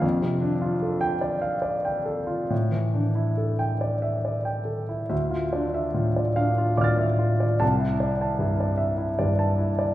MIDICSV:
0, 0, Header, 1, 2, 480
1, 0, Start_track
1, 0, Key_signature, -1, "minor"
1, 0, Tempo, 801068
1, 19, Time_signature, 6, 3, 24, 8
1, 980, Tempo, 870827
1, 2900, Tempo, 840336
1, 3860, Tempo, 797872
1, 5751, End_track
2, 0, Start_track
2, 0, Title_t, "Grand piano"
2, 0, Program_c, 0, 0
2, 0, Control_c, 0, 64, 127
2, 10, Note_on_c, 0, 41, 58
2, 28, Control_c, 0, 64, 0
2, 123, Control_c, 0, 64, 127
2, 128, Note_on_c, 0, 48, 40
2, 248, Note_on_c, 0, 62, 41
2, 318, Note_off_c, 0, 48, 0
2, 368, Note_on_c, 0, 65, 39
2, 439, Note_off_c, 0, 62, 0
2, 493, Note_on_c, 0, 69, 37
2, 561, Note_off_c, 0, 65, 0
2, 604, Note_on_c, 0, 79, 50
2, 685, Note_off_c, 0, 69, 0
2, 727, Note_on_c, 0, 74, 43
2, 802, Note_off_c, 0, 79, 0
2, 848, Note_on_c, 0, 77, 41
2, 927, Note_off_c, 0, 74, 0
2, 969, Note_on_c, 0, 74, 38
2, 1046, Note_off_c, 0, 77, 0
2, 1097, Note_on_c, 0, 79, 36
2, 1163, Note_off_c, 0, 74, 0
2, 1212, Note_on_c, 0, 69, 36
2, 1289, Note_off_c, 0, 79, 0
2, 1329, Note_on_c, 0, 65, 31
2, 1410, Note_off_c, 0, 69, 0
2, 1435, Note_off_c, 0, 41, 0
2, 1457, Note_off_c, 0, 65, 0
2, 1458, Note_on_c, 0, 45, 40
2, 1473, Control_c, 0, 64, 0
2, 1563, Control_c, 0, 64, 127
2, 1576, Note_on_c, 0, 52, 30
2, 1697, Note_on_c, 0, 62, 31
2, 1776, Note_off_c, 0, 52, 0
2, 1816, Note_on_c, 0, 64, 32
2, 1895, Note_off_c, 0, 62, 0
2, 1939, Note_on_c, 0, 69, 32
2, 2013, Note_off_c, 0, 64, 0
2, 2057, Note_on_c, 0, 79, 43
2, 2133, Note_off_c, 0, 69, 0
2, 2178, Note_on_c, 0, 74, 35
2, 2250, Note_off_c, 0, 79, 0
2, 2295, Note_on_c, 0, 76, 36
2, 2370, Note_off_c, 0, 74, 0
2, 2420, Note_on_c, 0, 74, 31
2, 2488, Note_off_c, 0, 76, 0
2, 2531, Note_on_c, 0, 79, 33
2, 2612, Note_off_c, 0, 74, 0
2, 2642, Note_on_c, 0, 69, 30
2, 2729, Note_off_c, 0, 79, 0
2, 2773, Note_on_c, 0, 64, 29
2, 2842, Note_off_c, 0, 69, 0
2, 2874, Note_off_c, 0, 45, 0
2, 2887, Note_on_c, 0, 76, 39
2, 2888, Note_on_c, 0, 38, 42
2, 2894, Note_off_c, 0, 64, 0
2, 2907, Control_c, 0, 64, 0
2, 3007, Note_on_c, 0, 65, 36
2, 3016, Control_c, 0, 64, 127
2, 3084, Note_off_c, 0, 76, 0
2, 3133, Note_on_c, 0, 74, 37
2, 3134, Note_on_c, 0, 62, 34
2, 3205, Note_off_c, 0, 65, 0
2, 3256, Note_on_c, 0, 76, 38
2, 3328, Note_off_c, 0, 74, 0
2, 3370, Note_on_c, 0, 45, 31
2, 3370, Note_on_c, 0, 65, 33
2, 3450, Note_off_c, 0, 76, 0
2, 3497, Note_on_c, 0, 74, 34
2, 3522, Note_off_c, 0, 62, 0
2, 3567, Note_off_c, 0, 65, 0
2, 3607, Note_on_c, 0, 62, 35
2, 3609, Note_on_c, 0, 77, 53
2, 3690, Note_off_c, 0, 74, 0
2, 3734, Note_on_c, 0, 65, 38
2, 3758, Note_off_c, 0, 45, 0
2, 3805, Note_off_c, 0, 77, 0
2, 3845, Note_on_c, 0, 86, 30
2, 3847, Note_on_c, 0, 45, 34
2, 3849, Note_on_c, 0, 74, 37
2, 3868, Note_on_c, 0, 89, 30
2, 3884, Note_on_c, 0, 93, 30
2, 3929, Note_off_c, 0, 65, 0
2, 3971, Note_on_c, 0, 76, 36
2, 3999, Note_off_c, 0, 62, 0
2, 4051, Note_off_c, 0, 74, 0
2, 4093, Note_on_c, 0, 65, 35
2, 4174, Note_off_c, 0, 76, 0
2, 4222, Note_on_c, 0, 74, 34
2, 4248, Note_off_c, 0, 45, 0
2, 4296, Note_off_c, 0, 65, 0
2, 4321, Note_off_c, 0, 86, 0
2, 4322, Note_off_c, 0, 38, 0
2, 4332, Note_off_c, 0, 89, 0
2, 4340, Note_on_c, 0, 36, 46
2, 4340, Note_on_c, 0, 81, 49
2, 4341, Note_off_c, 0, 93, 0
2, 4348, Note_off_c, 0, 74, 0
2, 4362, Control_c, 0, 64, 0
2, 4457, Note_on_c, 0, 64, 34
2, 4479, Control_c, 0, 64, 127
2, 4538, Note_off_c, 0, 81, 0
2, 4583, Note_on_c, 0, 74, 35
2, 4655, Note_off_c, 0, 64, 0
2, 4710, Note_on_c, 0, 81, 33
2, 4776, Note_off_c, 0, 74, 0
2, 4815, Note_on_c, 0, 43, 31
2, 4819, Note_on_c, 0, 64, 34
2, 4898, Note_off_c, 0, 81, 0
2, 4945, Note_on_c, 0, 74, 35
2, 5011, Note_off_c, 0, 64, 0
2, 5049, Note_on_c, 0, 76, 37
2, 5133, Note_off_c, 0, 74, 0
2, 5170, Note_on_c, 0, 64, 34
2, 5199, Note_off_c, 0, 43, 0
2, 5245, Note_off_c, 0, 76, 0
2, 5296, Note_on_c, 0, 74, 39
2, 5299, Note_on_c, 0, 43, 34
2, 5366, Note_off_c, 0, 64, 0
2, 5418, Note_on_c, 0, 81, 37
2, 5489, Note_off_c, 0, 74, 0
2, 5533, Note_on_c, 0, 64, 36
2, 5610, Note_off_c, 0, 81, 0
2, 5657, Note_on_c, 0, 74, 36
2, 5682, Note_off_c, 0, 43, 0
2, 5727, Note_off_c, 0, 64, 0
2, 5748, Note_off_c, 0, 36, 0
2, 5751, Note_off_c, 0, 74, 0
2, 5751, End_track
0, 0, End_of_file